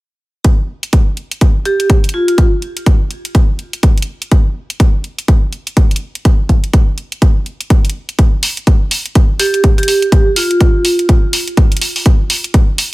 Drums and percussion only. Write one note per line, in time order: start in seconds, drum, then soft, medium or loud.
0.44 kick loud
0.44 closed hi-hat medium
0.83 closed hi-hat medium
0.93 kick loud
0.93 closed hi-hat medium
1.17 closed hi-hat soft
1.31 closed hi-hat medium
1.41 kick loud
1.41 closed hi-hat medium
1.65 closed hi-hat soft
1.80 closed hi-hat medium
1.90 kick loud
1.90 closed hi-hat medium
2.04 closed hi-hat soft
2.09 closed hi-hat medium
2.28 closed hi-hat soft
2.38 kick loud
2.38 closed hi-hat medium
2.62 closed hi-hat soft
2.77 closed hi-hat medium
2.86 kick loud
2.86 closed hi-hat medium
3.11 closed hi-hat soft
3.25 closed hi-hat medium
3.35 kick loud
3.35 closed hi-hat medium
3.59 closed hi-hat soft
3.73 closed hi-hat medium
3.83 kick loud
3.83 closed hi-hat medium
3.98 closed hi-hat soft
4.02 closed hi-hat medium
4.22 closed hi-hat soft
4.31 kick loud
4.31 closed hi-hat medium
4.70 closed hi-hat medium
4.80 kick loud
4.80 closed hi-hat medium
5.04 closed hi-hat soft
5.19 closed hi-hat soft
5.28 kick loud
5.28 closed hi-hat medium
5.53 closed hi-hat soft
5.67 closed hi-hat soft
5.77 kick loud
5.77 closed hi-hat medium
5.91 closed hi-hat soft
5.96 closed hi-hat medium
6.15 closed hi-hat soft
6.25 kick loud
6.25 closed hi-hat medium
6.49 kick medium
6.49 closed hi-hat soft
6.64 closed hi-hat soft
6.73 kick loud
6.73 closed hi-hat medium
6.98 closed hi-hat soft
7.12 closed hi-hat soft
7.22 kick loud
7.22 closed hi-hat medium
7.46 closed hi-hat soft
7.61 closed hi-hat soft
7.70 kick loud
7.70 closed hi-hat medium
7.85 closed hi-hat soft
7.90 closed hi-hat medium
8.09 closed hi-hat soft
8.19 kick loud
8.19 closed hi-hat medium
8.43 open hi-hat loud
8.57 closed hi-hat soft
8.67 kick loud
8.67 closed hi-hat medium
8.91 open hi-hat loud
9.06 closed hi-hat medium
9.15 kick loud
9.15 closed hi-hat medium
9.40 open hi-hat loud
9.54 closed hi-hat soft
9.64 kick loud
9.64 closed hi-hat medium
9.78 closed hi-hat soft
9.83 closed hi-hat medium
9.88 open hi-hat loud
10.02 closed hi-hat soft
10.12 kick loud
10.12 closed hi-hat medium
10.36 open hi-hat loud
10.51 closed hi-hat medium
10.61 kick loud
10.61 closed hi-hat medium
10.85 open hi-hat loud
10.99 closed hi-hat soft
11.09 kick loud
11.09 closed hi-hat medium
11.33 open hi-hat loud
11.48 closed hi-hat soft
11.57 kick loud
11.57 closed hi-hat medium
11.72 closed hi-hat soft
11.77 closed hi-hat medium
11.82 open hi-hat loud
11.96 open hi-hat medium
12.06 kick loud
12.06 closed hi-hat medium
12.30 open hi-hat medium
12.44 closed hi-hat medium
12.54 kick loud
12.54 closed hi-hat medium
12.78 open hi-hat loud